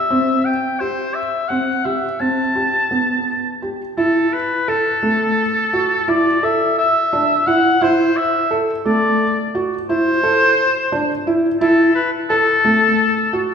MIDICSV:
0, 0, Header, 1, 3, 480
1, 0, Start_track
1, 0, Tempo, 701754
1, 74, Time_signature, 11, 3, 24, 8
1, 4635, Tempo, 689655
1, 9345, End_track
2, 0, Start_track
2, 0, Title_t, "Oboe"
2, 0, Program_c, 0, 68
2, 0, Note_on_c, 0, 76, 81
2, 307, Note_on_c, 0, 79, 80
2, 318, Note_off_c, 0, 76, 0
2, 546, Note_on_c, 0, 72, 72
2, 556, Note_off_c, 0, 79, 0
2, 781, Note_on_c, 0, 76, 75
2, 792, Note_off_c, 0, 72, 0
2, 1017, Note_on_c, 0, 78, 82
2, 1028, Note_off_c, 0, 76, 0
2, 1265, Note_on_c, 0, 76, 74
2, 1276, Note_off_c, 0, 78, 0
2, 1508, Note_on_c, 0, 81, 86
2, 1518, Note_off_c, 0, 76, 0
2, 2477, Note_off_c, 0, 81, 0
2, 2717, Note_on_c, 0, 69, 68
2, 2963, Note_on_c, 0, 71, 75
2, 2973, Note_off_c, 0, 69, 0
2, 3206, Note_on_c, 0, 69, 83
2, 3216, Note_off_c, 0, 71, 0
2, 4166, Note_on_c, 0, 74, 87
2, 4176, Note_off_c, 0, 69, 0
2, 4405, Note_on_c, 0, 76, 88
2, 4415, Note_off_c, 0, 74, 0
2, 4636, Note_off_c, 0, 76, 0
2, 4641, Note_on_c, 0, 76, 96
2, 5120, Note_on_c, 0, 78, 91
2, 5130, Note_off_c, 0, 76, 0
2, 5366, Note_on_c, 0, 72, 93
2, 5376, Note_off_c, 0, 78, 0
2, 5604, Note_on_c, 0, 76, 88
2, 5615, Note_off_c, 0, 72, 0
2, 5900, Note_off_c, 0, 76, 0
2, 6085, Note_on_c, 0, 74, 86
2, 6538, Note_off_c, 0, 74, 0
2, 6806, Note_on_c, 0, 72, 106
2, 7734, Note_off_c, 0, 72, 0
2, 7998, Note_on_c, 0, 69, 80
2, 8222, Note_off_c, 0, 69, 0
2, 8236, Note_on_c, 0, 71, 77
2, 8344, Note_off_c, 0, 71, 0
2, 8477, Note_on_c, 0, 69, 96
2, 9345, Note_off_c, 0, 69, 0
2, 9345, End_track
3, 0, Start_track
3, 0, Title_t, "Felt piano"
3, 0, Program_c, 1, 0
3, 72, Note_on_c, 1, 60, 76
3, 325, Note_off_c, 1, 60, 0
3, 550, Note_on_c, 1, 67, 59
3, 804, Note_off_c, 1, 67, 0
3, 1028, Note_on_c, 1, 60, 59
3, 1155, Note_off_c, 1, 60, 0
3, 1267, Note_on_c, 1, 67, 59
3, 1394, Note_off_c, 1, 67, 0
3, 1506, Note_on_c, 1, 60, 59
3, 1634, Note_off_c, 1, 60, 0
3, 1747, Note_on_c, 1, 67, 60
3, 1876, Note_off_c, 1, 67, 0
3, 1990, Note_on_c, 1, 59, 58
3, 2249, Note_off_c, 1, 59, 0
3, 2478, Note_on_c, 1, 67, 57
3, 2607, Note_off_c, 1, 67, 0
3, 2719, Note_on_c, 1, 64, 78
3, 2975, Note_off_c, 1, 64, 0
3, 3202, Note_on_c, 1, 69, 64
3, 3330, Note_off_c, 1, 69, 0
3, 3438, Note_on_c, 1, 57, 73
3, 3695, Note_off_c, 1, 57, 0
3, 3921, Note_on_c, 1, 66, 69
3, 4049, Note_off_c, 1, 66, 0
3, 4158, Note_on_c, 1, 64, 77
3, 4286, Note_off_c, 1, 64, 0
3, 4399, Note_on_c, 1, 69, 63
3, 4653, Note_off_c, 1, 69, 0
3, 4880, Note_on_c, 1, 62, 74
3, 5009, Note_off_c, 1, 62, 0
3, 5118, Note_on_c, 1, 64, 67
3, 5248, Note_off_c, 1, 64, 0
3, 5358, Note_on_c, 1, 64, 85
3, 5617, Note_off_c, 1, 64, 0
3, 5841, Note_on_c, 1, 69, 71
3, 5970, Note_off_c, 1, 69, 0
3, 6082, Note_on_c, 1, 57, 82
3, 6339, Note_off_c, 1, 57, 0
3, 6564, Note_on_c, 1, 66, 68
3, 6692, Note_off_c, 1, 66, 0
3, 6805, Note_on_c, 1, 64, 76
3, 6933, Note_off_c, 1, 64, 0
3, 7042, Note_on_c, 1, 69, 68
3, 7297, Note_off_c, 1, 69, 0
3, 7521, Note_on_c, 1, 62, 78
3, 7649, Note_off_c, 1, 62, 0
3, 7763, Note_on_c, 1, 64, 72
3, 7890, Note_off_c, 1, 64, 0
3, 8001, Note_on_c, 1, 64, 94
3, 8256, Note_off_c, 1, 64, 0
3, 8480, Note_on_c, 1, 69, 73
3, 8607, Note_off_c, 1, 69, 0
3, 8721, Note_on_c, 1, 57, 79
3, 8974, Note_off_c, 1, 57, 0
3, 9197, Note_on_c, 1, 66, 75
3, 9324, Note_off_c, 1, 66, 0
3, 9345, End_track
0, 0, End_of_file